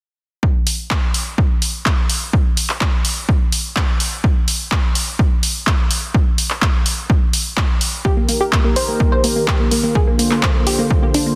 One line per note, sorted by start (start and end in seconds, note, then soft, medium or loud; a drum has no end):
0.43 kick loud
0.67 open hi-hat loud
0.91 kick loud
0.91 clap loud
1.14 open hi-hat medium
1.38 kick loud
1.62 open hi-hat medium
1.86 kick loud
1.86 clap loud
2.10 open hi-hat medium
2.33 kick loud
2.57 open hi-hat loud
2.69 clap soft
2.81 kick loud
2.81 clap loud
3.05 open hi-hat medium
3.29 kick loud
3.52 open hi-hat medium
3.76 kick loud
3.76 clap loud
4.00 open hi-hat medium
4.24 kick loud
4.48 open hi-hat loud
4.72 kick loud
4.72 clap loud
4.95 open hi-hat medium
5.19 kick loud
5.43 open hi-hat loud
5.67 kick loud
5.67 clap loud
5.91 open hi-hat medium
6.14 kick loud
6.38 open hi-hat loud
6.50 clap soft
6.62 kick loud
6.62 clap loud
6.86 open hi-hat medium
7.10 kick loud
7.33 open hi-hat loud
7.57 kick loud
7.57 clap loud
7.81 open hi-hat medium
8.05 9.93 D#3 medium
8.05 11.35 A#3 medium
8.05 9.93 G4 medium
8.05 8.13 G4 loud
8.05 9.93 A#4 medium
8.05 kick loud
8.17 8.24 A#3 medium
8.29 8.36 A#3 medium
8.29 open hi-hat loud
8.41 8.48 G4 medium
8.53 8.60 A#3 medium
8.53 kick loud
8.53 clap loud
8.64 8.72 A#3 medium
8.76 8.84 C5 medium
8.76 open hi-hat medium
8.88 8.96 A#3 medium
9.00 9.08 A#3 medium
9.00 kick loud
9.12 9.20 C5 medium
9.24 9.32 A#3 medium
9.24 open hi-hat medium
9.36 9.43 A#3 medium
9.48 9.55 G4 medium
9.48 kick loud
9.48 clap loud
9.60 9.67 A#3 medium
9.71 9.79 A#3 medium
9.71 open hi-hat medium
9.84 9.91 A#3 medium
9.95 11.35 D3 medium
9.95 11.35 F4 medium
9.95 10.03 G#4 medium
9.95 11.35 C5 medium
9.95 kick loud
10.07 10.15 A#3 medium
10.19 10.27 A#3 medium
10.19 open hi-hat medium
10.31 10.39 A#3 medium
10.31 clap soft
10.43 10.51 C5 medium
10.43 kick loud
10.43 clap loud
10.55 10.62 A#3 medium
10.67 10.74 G4 medium
10.67 open hi-hat medium
10.79 10.86 A#3 medium
10.91 kick loud
11.03 11.10 A#3 medium
11.14 11.22 D4 medium
11.14 open hi-hat medium
11.26 11.34 A#3 medium